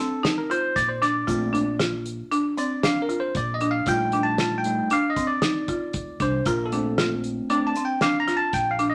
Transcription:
0.00 0.20 C4 medium
0.00 0.34 A4 medium
0.23 0.46 D#4 medium
0.23 snare loud
0.23 closed hi-hat medium
0.38 0.51 A#4 medium
0.50 0.95 F4 medium
0.50 0.77 C5 loud
0.50 closed hi-hat medium
0.76 1.22 A#2 medium
0.76 0.88 D5 loud
0.76 kick loud
0.76 snare soft
0.76 closed hi-hat medium
0.76 shaker soft
0.89 1.02 C5 medium
1.02 1.24 D4 medium
1.02 1.76 D5 loud
1.02 snare soft
1.02 closed hi-hat medium
1.02 shaker soft
1.27 2.19 A#1 loud
1.27 1.62 A3 medium
1.27 1.62 C4 soft
1.27 1.63 D4 medium
1.27 1.50 F4 medium
1.27 kick loud
1.27 closed hi-hat medium
1.27 shaker medium
1.53 1.76 D4 medium
1.53 closed hi-hat medium
1.80 2.25 F4 medium
1.80 snare medium
1.80 closed hi-hat medium
2.06 closed hi-hat medium
2.32 2.54 D4 medium
2.32 closed hi-hat medium
2.58 2.80 C4 medium
2.58 2.84 D5 medium
2.58 closed hi-hat medium
2.58 shaker soft
2.83 3.06 D4 medium
2.83 3.01 F5 loud
2.83 snare loud
2.83 closed hi-hat medium
3.02 3.19 A#4 medium
3.09 3.54 F4 medium
3.09 closed hi-hat medium
3.20 3.37 C5 medium
3.35 3.81 A#1 medium
3.35 3.54 D5 medium
3.35 kick loud
3.35 closed hi-hat medium
3.35 shaker soft
3.54 3.71 D#5 medium
3.61 3.84 D4 medium
3.61 closed hi-hat medium
3.71 3.88 F5 medium
3.86 4.78 A#1 medium
3.86 4.64 G3 medium
3.86 4.64 A3 soft
3.86 4.65 D#4 medium
3.86 4.10 F4 medium
3.86 4.23 G5 loud
3.86 kick medium
3.86 closed hi-hat medium
3.86 shaker medium
4.12 4.36 D4 medium
4.12 closed hi-hat medium
4.23 4.58 A5 medium
4.38 4.84 F4 medium
4.38 snare medium
4.38 closed hi-hat medium
4.58 4.92 G5 medium
4.64 4.88 G3 soft
4.64 4.88 A3 soft
4.64 4.88 D#4 soft
4.64 closed hi-hat medium
4.90 5.13 D4 medium
4.90 5.09 F5 loud
4.90 closed hi-hat medium
5.10 5.27 D#5 medium
5.16 5.39 C4 medium
5.16 kick medium
5.16 closed hi-hat medium
5.16 shaker soft
5.27 6.24 D5 medium
5.42 5.65 D#4 medium
5.42 snare loud
5.42 closed hi-hat medium
5.68 6.14 F4 medium
5.68 kick medium
5.68 closed hi-hat medium
5.93 6.17 D2 medium
5.93 kick medium
5.93 closed hi-hat medium
6.20 6.43 C2 medium
6.20 6.43 D4 medium
6.20 6.45 C5 medium
6.20 kick medium
6.20 closed hi-hat medium
6.20 shaker soft
6.45 7.37 A#1 loud
6.45 6.69 F4 medium
6.45 6.64 A#4 medium
6.45 kick loud
6.45 closed hi-hat medium
6.45 shaker medium
6.66 7.13 A4 medium
6.72 7.48 A3 medium
6.72 7.49 C4 medium
6.72 6.95 D4 medium
6.72 7.49 D4 medium
6.72 closed hi-hat medium
6.98 7.43 F4 medium
6.98 snare loud
6.98 closed hi-hat medium
7.24 closed hi-hat medium
7.50 7.73 A3 soft
7.50 7.73 C4 soft
7.50 7.72 D4 medium
7.50 7.73 D4 medium
7.50 7.68 D5 medium
7.50 closed hi-hat medium
7.67 7.85 A5 medium
7.75 7.99 C4 medium
7.75 closed hi-hat medium
7.75 shaker soft
7.85 8.02 G5 medium
8.01 8.24 D4 medium
8.01 8.18 F5 loud
8.01 snare loud
8.01 closed hi-hat medium
8.20 8.37 A#5 loud
8.28 8.73 F4 medium
8.28 snare soft
8.28 closed hi-hat medium
8.37 8.52 A5 loud
8.53 8.95 A#1 medium
8.53 8.71 G5 medium
8.53 kick medium
8.53 snare soft
8.53 closed hi-hat medium
8.53 shaker soft
8.71 8.87 F5 medium
8.79 8.95 D4 medium
8.79 closed hi-hat medium
8.90 8.95 D#5 medium

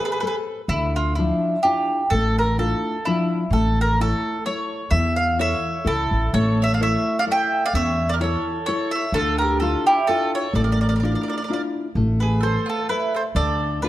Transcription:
0.00 0.05 G#4 soft
0.00 0.13 A4 medium
0.00 0.13 B4 soft
0.00 0.13 C5 medium
0.05 0.12 G#4 medium
0.05 0.11 B4 medium
0.12 0.19 G#4 medium
0.12 0.19 B4 medium
0.20 0.27 G#4 soft
0.20 0.60 A4 medium
0.20 0.26 B4 medium
0.20 0.61 B4 soft
0.20 0.61 C5 medium
0.27 0.35 G#4 soft
0.27 0.35 B4 medium
0.68 1.30 D2 medium
0.68 1.16 D3 soft
0.68 0.96 E4 medium
0.96 1.15 F4 medium
1.15 1.56 F3 soft
1.15 1.55 D4 soft
1.15 1.60 E4 medium
1.15 1.56 E4 soft
1.63 2.02 D4 soft
1.63 2.02 E4 soft
1.63 2.02 F4 medium
1.63 2.12 G4 medium
2.10 2.72 A1 medium
2.10 2.57 A3 medium
2.10 2.37 A4 medium
2.38 2.59 A#4 medium
2.58 2.95 D4 soft
2.58 2.96 E4 soft
2.58 2.96 F4 soft
2.58 3.07 A4 medium
3.05 3.44 F3 medium
3.05 3.43 D4 soft
3.05 3.49 E4 medium
3.05 3.43 E4 soft
3.50 4.12 A1 medium
3.50 3.97 A3 medium
3.50 3.79 A4 medium
3.81 3.99 A#4 medium
4.01 4.37 E4 soft
4.01 4.44 A4 medium
4.01 4.38 A4 soft
4.01 4.38 C#5 medium
4.46 4.84 E4 soft
4.46 4.84 A4 soft
4.46 4.94 C#5 medium
4.46 4.84 C#5 medium
4.91 5.53 E2 medium
4.91 5.38 E3 soft
4.91 5.16 E5 medium
5.16 5.39 F5 medium
5.39 5.77 E4 soft
5.39 5.78 A4 soft
5.39 5.83 C#5 medium
5.39 5.77 C#5 medium
5.39 5.89 E5 medium
5.84 6.09 C#2 medium
5.84 6.23 E4 soft
5.84 6.31 E4 medium
5.84 6.23 A4 soft
5.84 6.31 A4 medium
5.84 6.24 C#5 soft
6.11 6.31 A1 medium
6.34 6.95 A1 medium
6.34 6.79 A3 medium
6.34 6.58 A4 medium
6.34 6.60 C#5 medium
6.62 6.74 C#5 medium
6.62 6.74 E5 medium
6.74 6.80 D5 medium
6.74 6.81 F5 medium
6.81 7.18 E4 soft
6.81 7.18 A4 soft
6.81 7.18 C#5 medium
6.81 7.16 C#5 medium
6.81 7.16 E5 medium
7.19 7.24 D5 medium
7.19 7.24 F5 medium
7.27 7.65 E4 medium
7.27 7.65 A4 soft
7.27 7.65 C#5 medium
7.31 7.63 E5 medium
7.31 7.64 G5 loud
7.66 7.75 D5 medium
7.66 7.75 F5 medium
7.74 8.34 E2 medium
7.74 8.20 C#4 medium
7.74 8.09 C#5 medium
7.74 8.08 E5 medium
8.09 8.14 D5 medium
8.14 8.18 A#4 medium
8.20 8.58 E4 soft
8.20 8.58 A4 soft
8.20 8.66 A4 medium
8.20 8.64 C#5 medium
8.20 8.59 C#5 medium
8.66 9.05 E4 soft
8.66 9.05 A4 soft
8.66 8.92 A4 medium
8.66 8.91 C#5 medium
8.66 9.06 C#5 medium
8.91 9.12 E5 medium
8.95 9.14 C#5 medium
9.12 9.73 D2 medium
9.12 9.60 D3 medium
9.12 9.39 F4 medium
9.12 9.38 A4 medium
9.38 9.60 G4 medium
9.38 9.59 A#4 medium
9.60 9.98 D4 medium
9.60 9.99 E4 soft
9.60 9.99 F4 medium
9.60 9.85 F4 medium
9.60 9.84 A4 medium
9.87 10.07 E4 medium
9.87 10.08 G4 medium
10.07 10.46 D4 soft
10.07 10.45 E4 soft
10.07 10.46 F4 medium
10.07 10.32 F4 medium
10.07 10.31 A4 medium
10.35 10.54 A4 medium
10.35 10.54 C#5 medium
10.54 11.15 A1 medium
10.54 10.99 A3 medium
10.54 10.62 A4 medium
10.54 10.63 D5 medium
10.64 10.70 A#4 soft
10.64 10.71 D5 medium
10.71 10.79 A#4 soft
10.71 10.79 D5 medium
10.81 10.87 A#4 soft
10.81 10.86 D5 medium
10.89 10.94 A#4 soft
10.89 10.94 D5 medium
10.96 11.02 A#4 soft
10.96 10.99 D5 medium
11.00 11.40 D4 medium
11.00 11.40 E4 soft
11.00 11.40 F4 soft
11.00 11.09 A#4 soft
11.00 11.04 D5 soft
11.05 11.14 D5 soft
11.12 11.17 A#4 soft
11.12 11.22 D5 medium
11.21 11.26 A#4 soft
11.21 11.28 D5 soft
11.28 11.32 A#4 soft
11.28 11.36 D5 medium
11.33 11.39 A#4 soft
11.38 11.43 D5 medium
11.42 11.47 A#4 soft
11.42 11.52 D5 medium
11.48 11.86 D4 soft
11.48 11.87 E4 soft
11.48 11.87 F4 soft
11.48 11.54 A#4 soft
11.53 11.62 A#4 soft
11.53 11.61 D5 medium
11.95 12.56 A1 medium
11.95 12.41 A3 soft
12.20 12.41 G#4 medium
12.20 12.40 B4 medium
12.41 12.65 A4 medium
12.41 12.80 A4 soft
12.41 12.80 B4 soft
12.41 12.69 C5 medium
12.41 12.80 C5 soft
12.66 12.86 F4 medium
12.66 12.88 A4 medium
12.89 13.13 E4 medium
12.89 13.27 A4 soft
12.89 13.13 B4 medium
12.89 13.27 B4 soft
12.89 13.27 C5 medium
13.14 13.20 A4 medium
13.14 13.22 C5 medium
13.35 13.89 D2 medium
13.35 13.81 D3 medium
13.35 13.79 A4 medium
13.35 13.79 D5 loud
13.82 13.89 D4 soft
13.82 13.89 F4 soft
13.82 13.89 F4 medium
13.82 13.89 A4 medium
13.82 13.89 B4 medium

